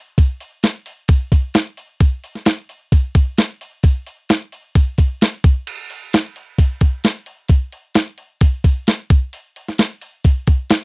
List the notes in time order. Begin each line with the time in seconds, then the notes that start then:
0.18 kick, open hi-hat
0.40 open hi-hat
0.63 snare, open hi-hat
0.86 open hi-hat
1.08 kick, open hi-hat
1.32 kick, open hi-hat
1.54 snare, open hi-hat
1.77 open hi-hat
2.00 kick, open hi-hat
2.24 open hi-hat
2.35 snare
2.45 snare, open hi-hat
2.69 open hi-hat
2.92 kick, open hi-hat
3.15 kick, open hi-hat
3.38 snare, open hi-hat
3.61 open hi-hat
3.83 kick, open hi-hat
4.07 open hi-hat
4.29 snare, open hi-hat
4.52 open hi-hat
4.75 kick, open hi-hat
4.98 kick, open hi-hat
5.21 snare, open hi-hat
5.44 kick, open hi-hat
5.67 crash
5.90 open hi-hat
6.13 snare, open hi-hat
6.36 open hi-hat
6.58 kick, open hi-hat
6.81 kick, open hi-hat
7.04 snare, open hi-hat
7.26 open hi-hat
7.49 kick, open hi-hat
7.72 open hi-hat
7.95 snare, open hi-hat
8.18 open hi-hat
8.41 kick, open hi-hat
8.64 kick, open hi-hat
8.87 snare, open hi-hat
9.10 kick, open hi-hat
9.33 open hi-hat
9.56 open hi-hat
9.68 snare
9.78 snare, open hi-hat
10.01 open hi-hat
10.24 kick, open hi-hat
10.47 kick, open hi-hat
10.70 snare, open hi-hat